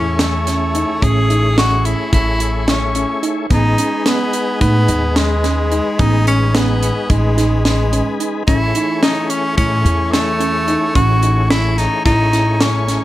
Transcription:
Already playing: upright bass E2, tonewheel organ A3 E4 G#4 C#5, tenor saxophone C#4, synth arpeggio sound E4
0.19 tenor saxophone A3, snare, closed hi-hat
0.47 synth arpeggio sound C#4, snare, closed hi-hat
0.75 synth arpeggio sound D#4, closed hi-hat
1.02 upright bass A1, synth arpeggio sound C#4, tenor saxophone G#4, kick, closed hi-hat
1.30 synth arpeggio sound D#4, closed hi-hat
1.58 synth arpeggio sound C#4, tenor saxophone F#4, snare, closed hi-hat
1.85 tenor saxophone E4, closed hi-hat
2.13 upright bass A1, synth arpeggio sound E4, tenor saxophone E4, kick, closed hi-hat
2.40 synth arpeggio sound E4, closed hi-hat
2.68 tenor saxophone C#4, snare, closed hi-hat
2.95 synth arpeggio sound C#4, closed hi-hat
3.23 synth arpeggio sound D#4, closed hi-hat
3.50 upright bass A1, tonewheel organ G#3 D#4 G#4 B4, synth arpeggio sound B3, tenor saxophone D#4, kick, closed hi-hat
3.78 synth arpeggio sound C#4, closed hi-hat
4.06 synth arpeggio sound B3, tenor saxophone B3, snare, closed hi-hat
4.33 closed hi-hat
4.61 upright bass A2, tenor saxophone B3, synth arpeggio sound D#4, kick, closed hi-hat
4.88 upright bass D#2, synth arpeggio sound D#4, closed hi-hat
5.16 tenor saxophone G#3, snare, closed hi-hat
5.44 synth arpeggio sound C#4, snare, closed hi-hat
5.72 synth arpeggio sound D#4, closed hi-hat
5.99 upright bass A1, synth arpeggio sound B3, tenor saxophone D#4, kick, closed hi-hat
6.27 synth arpeggio sound C#4, tenor saxophone C#4, closed hi-hat
6.55 tenor saxophone B3, synth arpeggio sound B3, snare, closed hi-hat
6.83 closed hi-hat
7.10 upright bass A1, tenor saxophone G#3, synth arpeggio sound D#4, kick, closed hi-hat
7.37 synth arpeggio sound D#4, snare, closed hi-hat
7.65 tenor saxophone G#3, snare, closed hi-hat
7.93 synth arpeggio sound C#4, closed hi-hat
8.20 synth arpeggio sound D#4, closed hi-hat
8.47 upright bass A1, tonewheel organ E3 A3 G#4 C#5, synth arpeggio sound C#4, tenor saxophone E4, kick, closed hi-hat
8.75 synth arpeggio sound D#4, closed hi-hat
9.03 synth arpeggio sound C#4, tenor saxophone D#4, snare, closed hi-hat
9.29 tenor saxophone C#4, closed hi-hat
9.57 upright bass A2, tenor saxophone C#4, synth arpeggio sound E4, kick, closed hi-hat
9.85 upright bass E2, synth arpeggio sound E4, closed hi-hat
10.12 tenor saxophone A3, snare, closed hi-hat
10.40 synth arpeggio sound C#4, closed hi-hat
10.68 synth arpeggio sound D#4, closed hi-hat
10.95 upright bass A1, synth arpeggio sound C#4, tenor saxophone F#4, kick, closed hi-hat
11.23 synth arpeggio sound D#4, closed hi-hat
11.50 synth arpeggio sound C#4, tenor saxophone E4, snare, closed hi-hat
11.78 tenor saxophone D#4, snare, closed hi-hat
12.05 upright bass A1, tenor saxophone D#4, synth arpeggio sound E4, kick, snare, closed hi-hat
12.33 synth arpeggio sound E4, snare, closed hi-hat
12.61 tenor saxophone C#4, snare, closed hi-hat
12.88 synth arpeggio sound C#4, snare, closed hi-hat

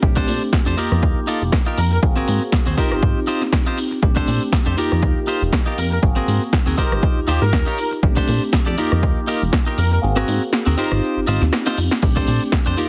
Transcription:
0.02 analog synth bass A#1, tine electric piano A3 C4 D4 G4, kick, shaker
0.16 clean electric guitar D4 G4 A4 C5, kick
0.28 analog synth bass A#2, open hi-hat, shaker
0.42 shaker
0.53 kick, snare, shaker
0.66 analog synth bass F2, clean electric guitar D4 G4 A4 C5
0.77 analog synth bass F2, tine electric piano A#3 D#4 F4 G4, clean electric guitar D#4 F4 G4 A#4, open hi-hat, shaker
0.92 analog synth bass F2, cross-stick, shaker
1.03 analog synth bass D#2, kick, shaker
1.27 clean electric guitar D#4 F4 G4 A4, open hi-hat, shaker
1.42 analog synth bass F1, shaker
1.52 muted clean electric guitar stroke, kick, cross-stick, snare, shaker
1.66 clean electric guitar D#4 F4 G4 A#4
1.78 analog synth bass F2, horn section A#4, open hi-hat, shaker
1.92 horn section A#4, muted clean electric guitar stroke, shaker
2.02 analog synth bass G#1, tine electric piano A#3 C4 F#4 G#4, kick, shaker
2.16 clean electric guitar C4 F#4 G#4 A#4
2.28 analog synth bass G#2, open hi-hat, shaker
2.42 shaker
2.52 kick, snare, shaker
2.66 analog synth bass D#2, clean electric guitar C4 F#4 G#4 C5, open hi-hat
2.77 analog synth bass G#1, tine electric piano C4 D#4 F4 G4, clean electric guitar D#4 F4 G4 C5, horn section A#4, kick, open hi-hat, shaker
2.92 analog synth bass G#1, cross-stick, shaker
3.03 analog synth bass G#2, kick, shaker
3.27 clean electric guitar D#4 F4 G4 C5, open hi-hat, shaker
3.41 snare, shaker
3.53 kick, cross-stick, snare, shaker
3.66 clean electric guitar D#4 F4 G4 C5
3.78 open hi-hat, shaker
3.91 muted clean electric guitar stroke, shaker
4.02 analog synth bass A#1, tine electric piano A3 C4 D4 G4, kick, shaker
4.16 clean electric guitar D4 G4 A4 C5, kick
4.28 analog synth bass A#2, open hi-hat, shaker
4.42 shaker
4.53 kick, snare, shaker
4.66 analog synth bass F2, clean electric guitar D4 G4 A4 C5
4.77 analog synth bass F2, tine electric piano A#3 D#4 F4 G4, clean electric guitar D#4 F4 G4 A#4, open hi-hat, shaker
4.92 analog synth bass F2, cross-stick, shaker
5.02 analog synth bass D#2, kick, shaker
5.27 clean electric guitar D#4 F4 G4 C5, open hi-hat, shaker
5.42 analog synth bass F1, shaker
5.52 muted clean electric guitar stroke, kick, cross-stick, snare, shaker
5.66 clean electric guitar D#4 F4 G4 A#4
5.78 analog synth bass F2, horn section A#4, open hi-hat, shaker
5.91 horn section A#4, muted clean electric guitar stroke, shaker
6.02 analog synth bass G#1, tine electric piano A#3 C4 F#4 G#4, kick, shaker
6.16 clean electric guitar C4 F#4 G#4 A#4
6.28 analog synth bass G#2, open hi-hat, shaker
6.42 shaker
6.53 kick, snare, shaker
6.66 analog synth bass D#2, clean electric guitar C4 F#4 G#4 A#4, open hi-hat
6.77 analog synth bass G#1, clean electric guitar D#4 F4 G4 C5, tine electric piano D#4 F4 G4, horn section A#4, kick, open hi-hat, shaker
6.92 analog synth bass G#1, cross-stick, shaker
7.03 kick, shaker
7.17 analog synth bass D#2
7.27 analog synth bass D#2, clean electric guitar D#4 F4 G4 C5, horn section G4, open hi-hat, shaker
7.42 analog synth bass G#2, horn section A#4, snare, shaker
7.53 analog synth bass D#2, kick, cross-stick, snare, shaker
7.66 clean electric guitar D#4 F4 G4 C#5
7.78 open hi-hat, shaker
7.91 muted clean electric guitar stroke, shaker
8.02 analog synth bass A#1, tine electric piano A3 C4 D4 G4, kick, shaker
8.16 clean electric guitar D4 G4 A4 C5, kick
8.28 analog synth bass A#2, open hi-hat, shaker
8.42 shaker
8.53 kick, snare, shaker
8.66 analog synth bass F2, clean electric guitar D4 G4 A4 D5
8.77 analog synth bass F2, tine electric piano A#3 D#4 F4 G4, clean electric guitar D#4 F4 G4 A#4, open hi-hat, shaker
8.92 analog synth bass F2, cross-stick, shaker
9.03 analog synth bass D#2, kick, shaker
9.27 clean electric guitar D#4 F4 G4 A#4, open hi-hat, shaker
9.42 analog synth bass F1, shaker
9.53 kick, cross-stick, snare, shaker
9.66 clean electric guitar D#4 F4 G4 A#4
9.78 analog synth bass F2, horn section A#4, open hi-hat, shaker
9.91 horn section A#4, muted clean electric guitar stroke, shaker
10.02 analog synth bass G#1, tine electric piano A#3 C4 F#4 G#4, shaker
10.16 clean electric guitar C4 F#4 G#4 A#4, cross-stick
10.28 analog synth bass G#2, open hi-hat, shaker
10.42 shaker
10.53 snare, shaker
10.66 analog synth bass D#2, clean electric guitar C4 F#4 G#4 A#4, open hi-hat
10.77 analog synth bass G#1, tine electric piano C4 D#4 F4 G4, clean electric guitar D#4 F4 G4 C5, horn section A#4, open hi-hat, shaker
10.92 analog synth bass G#1, cross-stick, shaker
11.03 shaker
11.17 analog synth bass G#1
11.27 analog synth bass G#1, clean electric guitar D#4 F4 G4 C5, open hi-hat, shaker
11.42 analog synth bass D#2, snare, shaker
11.52 muted clean electric guitar stroke, cross-stick, snare, shaker
11.66 clean electric guitar D#4 F4 G4 C5, snare
11.77 analog synth bass F2, open hi-hat, shaker
11.91 muted clean electric guitar stroke, snare, shaker
12.02 analog synth bass A#1, tine electric piano A3 C4 D4 G4, kick, crash, shaker
12.16 clean electric guitar D4 G4 A4 C5, kick
12.27 analog synth bass A#2, open hi-hat, shaker
12.42 shaker
12.52 kick, snare, shaker
12.66 analog synth bass F2, clean electric guitar D4 G4 A4 C5
12.77 analog synth bass F2, tine electric piano A#3 D#4 F4 G4, clean electric guitar D#4 F4 G4 A#4, open hi-hat, shaker

